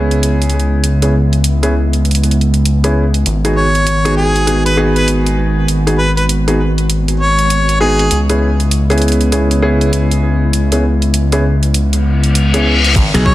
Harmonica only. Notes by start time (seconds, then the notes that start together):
3.56 C#5
4.16 G#4
4.66 B4
4.96 B4
5.98 B4
6.17 B4
7.20 C#5
7.80 G#4
13.25 C#5